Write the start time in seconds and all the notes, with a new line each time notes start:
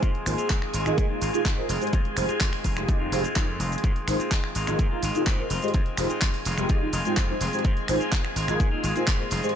Already playing: G#4 G#5
0.02 G#2 D#3 G#3 C4 F4, kick, closed hi-hat, shaker
0.15 closed hi-hat
0.26 G#1 A#3 D#4 F4 G#4 C5, finger snap, open hi-hat, shaker
0.38 G#3 C4 F4, closed hi-hat, shaker
0.50 G#2 D#3 G#3 C4, kick, clap, closed hi-hat, shaker
0.62 finger snap
0.73 G#1 D#3 G#3 C4 F4, open hi-hat, shaker
0.86 G#1 A#3 D#4 F4 G#4 D#5, finger snap, closed hi-hat, shaker
0.98 G#2, kick, closed hi-hat, shaker
1.09 G#3 A#3 C4 D#4 F4 G#4 F5
1.21 G#1 D#3 G#3 C4 F4, open hi-hat, shaker
1.33 G#3 A#3 C4 D#4 F4 G#4 C5, closed hi-hat, shaker
1.45 G#2 D#3 G#3 C4 F4, kick, clap, closed hi-hat, shaker
1.57 G#3 A#3 C4 D#4 F4 G#4 C5
1.69 F1 D#3 G#3 C4 F4, open hi-hat, shaker
1.81 G#3 D#4 F4 G4 C5, closed hi-hat, shaker
1.87 closed hi-hat
1.93 F2 D#3 G#3 C4 F4, kick, closed hi-hat, shaker
2.05 muted slap bass stroke, closed hi-hat
2.16 F1 G#3 D#4 F4 G4 C5, finger snap, open hi-hat, shaker
2.29 G#3 C4 F4, muted slap bass stroke, closed hi-hat, shaker
2.40 F2 D#3 G#3 C4 F4, kick, clap, closed hi-hat, shaker
2.53 finger snap, open hi-hat
2.64 F1 D#3 G#3 C4 F4, kick, open hi-hat, shaker
2.76 F1 G#3 D#4 F4 G4 D#5, finger snap, closed hi-hat, shaker
2.88 F2, kick, closed hi-hat, shaker
3.00 G#3 C4 D#4 F4 G4 F5
3.12 F1 D#3 G#3 C4 D#4 F4 G4 C5, open hi-hat, shaker
3.24 G#3 C4 F4, muted slap bass stroke, closed hi-hat, shaker
3.36 F2 D#3 G#3 C4 D#4 F4 G4 A#4, kick, clap, closed hi-hat, shaker
3.48 G#3 C4 F4
3.59 F1 D#3 G#3 C4 F4, open hi-hat, shaker
3.72 closed hi-hat, shaker
3.78 closed hi-hat
3.84 G#2 G#3 C4 F4 G#4 G#5, kick, closed hi-hat, shaker
3.96 closed hi-hat, shaker
4.07 G#1 A#3 D#4 F4 G#4 C5, finger snap, open hi-hat, shaker
4.19 G#3 C4 F4, closed hi-hat, shaker
4.31 G#2 D#3 G#3 C4 F4, kick, clap, closed hi-hat, shaker
4.44 finger snap
4.55 G#1 D#3 G#3 C4 F4, open hi-hat, shaker
4.67 G#1 A#3 D#4 F4 G#4 D#5, finger snap, closed hi-hat, shaker
4.79 G#2, kick, closed hi-hat, shaker
4.91 G#3 A#3 C4 D#4 F4 G#4 F5
5.03 G#1 D#3 G#3 C4 F4, open hi-hat, shaker
5.15 A#3 D#4 F4 G#4 C5, closed hi-hat, shaker
5.26 G#2 D#3 G#3 C4 F4, kick, clap, closed hi-hat, shaker
5.38 G#3 A#3 C4 D#4 F4 G#4 C5
5.50 F1 D#3 G#3 C4 F4, open hi-hat, shaker
5.62 G#3 D#4 F4 G4 C5, closed hi-hat, shaker
5.68 closed hi-hat
5.74 F2 C4 F4, kick, closed hi-hat, shaker
5.86 muted slap bass stroke, closed hi-hat, shaker
5.97 F1 G#3 D#4 F4 G4 C5, finger snap, open hi-hat, shaker
6.10 G#3 C4 F4, closed hi-hat, shaker
6.21 F2 D#3 G#3 C4 F4, kick, clap, closed hi-hat, shaker
6.34 open hi-hat
6.45 F1 D#3 G#3 C4 F4, open hi-hat, shaker
6.58 F1 G#3 D#4 F4 G4 D#5, finger snap, closed hi-hat, shaker
6.69 F2 D#3 G#3 C4 F4, kick, closed hi-hat, shaker
6.81 G#3 C4 D#4 F4 G4 F5, muted slap bass stroke
6.93 F1 D#3 G#3 C4 F4, open hi-hat, shaker
7.05 G#3 C4 D#4 F4 G4 C5, muted slap bass stroke, closed hi-hat, shaker
7.17 F2 G#3 F4, kick, clap, closed hi-hat, shaker
7.29 G#3 C4 D#4 F4 G4 C5
7.40 F1 D#3 G#3 C4 F4, open hi-hat, shaker
7.53 G#3 D#4 F4 G4 C5, closed hi-hat, shaker
7.59 closed hi-hat
7.64 G#2 D#3 G#3 C4 F4, kick, closed hi-hat, shaker
7.77 closed hi-hat, shaker
7.88 G#1 A#3 D#4 F4 G#4 C5, finger snap, open hi-hat, shaker
8.00 G#3 C4 F4, closed hi-hat, shaker
8.12 G#2 D#3 G#3 C4 F4, kick, clap, closed hi-hat, shaker
8.25 finger snap
8.35 G#1 D#3 G#3 C4 F4, open hi-hat, shaker
8.48 G#1 A#3 D#4 F4 G#4 D#5, finger snap, closed hi-hat, shaker
8.60 G#2, kick, closed hi-hat, shaker
8.71 G#3 A#3 C4 D#4 F4 G#4 F5
8.83 G#1 D#3 G#3 C4 F4, open hi-hat, shaker
8.95 G#3 A#3 C4 D#4 F4 G#4 C5, closed hi-hat, shaker
9.07 G#2 D#3 G#3 C4 F4, kick, clap, closed hi-hat, shaker
9.19 G#3 A#3 C4 D#4 F4 G#4 C5
9.31 F1 D#3 G#3 C4 F4, open hi-hat, shaker
9.43 G#3 D#4 F4 G4 C5, closed hi-hat, shaker
9.49 closed hi-hat